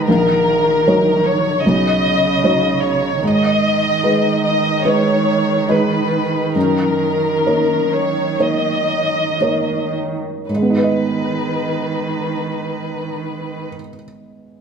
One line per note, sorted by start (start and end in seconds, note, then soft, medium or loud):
0.00 1.60 D#3 soft
0.07 0.84 A#1 soft
0.07 1.22 A#4 medium
0.87 1.61 F#3 soft
0.87 1.61 D#4 soft
0.87 1.61 C#5 soft
1.24 1.63 C#5 medium
1.61 2.81 D#5 medium
1.65 2.42 B1 soft
1.65 3.20 C#3 soft
2.44 3.19 F#3 soft
2.44 3.19 D#4 soft
2.44 3.19 C#5 soft
2.81 3.21 C#5 medium
3.23 4.00 G#2 soft
3.23 10.18 D#3 soft
3.23 4.42 D#5 medium
4.04 4.80 G#3 soft
4.04 4.80 D#4 soft
4.04 4.80 B4 soft
4.43 4.83 D#5 medium
4.83 5.65 G#3 soft
4.83 5.65 D#4 soft
4.83 5.65 B4 soft
4.83 5.68 C#5 medium
5.69 6.51 G#3 soft
5.69 6.52 D#4 soft
5.69 6.55 B4 soft
5.69 6.52 B4 soft
6.56 7.42 F#2 soft
6.56 7.89 A#4 medium
7.46 8.36 A#3 soft
7.46 8.36 D#4 soft
7.46 8.36 C#5 soft
7.91 8.39 C#5 soft
8.39 9.36 A#3 soft
8.39 9.37 D#4 soft
8.39 9.37 C#5 soft
8.39 9.94 D#5 medium
9.41 10.45 A#3 soft
9.41 10.46 D#4 soft
9.41 10.45 C#5 soft
10.48 13.68 G#2 soft
10.48 13.68 D#3 soft
10.48 13.66 B4 soft
10.56 13.75 G#3 soft
10.62 13.81 B3 soft
10.70 13.89 D#4 soft
10.77 13.96 B4 soft
10.84 14.02 D#5 soft